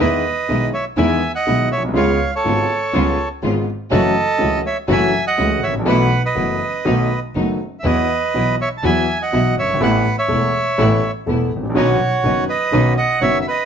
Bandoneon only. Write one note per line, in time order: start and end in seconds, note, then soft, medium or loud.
0.00 0.70 B4 medium
0.00 0.70 D#5 medium
0.74 0.85 C#5 medium
0.74 0.85 E5 medium
0.98 1.32 E5 medium
0.98 1.32 G#5 medium
1.35 1.69 D#5 medium
1.35 1.69 F#5 medium
1.72 1.83 C#5 medium
1.72 1.83 E5 medium
1.96 2.31 C#5 medium
1.96 2.34 F5 medium
2.36 3.29 A4 soft
2.36 3.28 C#5 medium
3.93 4.61 A4 medium
3.93 4.61 D#5 medium
4.67 4.77 C#5 medium
4.67 4.77 E5 medium
4.92 5.25 E5 medium
4.92 5.25 G#5 medium
5.27 5.61 D#5 medium
5.27 5.65 F#5 medium
5.63 5.74 C#5 medium
5.63 5.75 E5 medium
5.88 6.22 B4 medium
5.88 6.23 F#5 medium
6.25 7.20 B4 soft
6.25 7.20 D#5 medium
7.80 7.86 E5 soft
7.85 8.55 B4 medium
7.85 8.56 D#5 medium
8.61 8.69 C#5 soft
8.61 8.69 E5 medium
8.78 8.84 A5 medium
8.85 9.18 E5 medium
8.85 9.22 G#5 medium
9.22 9.55 D#5 medium
9.22 9.56 F#5 medium
9.59 9.81 C#5 medium
9.59 9.83 E5 medium
9.83 10.16 B4 medium
9.83 10.16 F#5 medium
10.18 11.11 C#5 soft
10.18 11.11 E5 medium
11.76 12.45 F#4 medium
11.76 12.44 C#5 medium
12.49 12.93 B4 medium
12.49 12.94 D#5 medium
12.97 13.19 D#5 medium
12.97 13.22 F#5 medium
13.21 13.38 C#5 medium
13.21 13.39 E5 medium
13.41 13.46 E5 medium
13.48 13.65 B4 medium
13.48 13.65 D#5 medium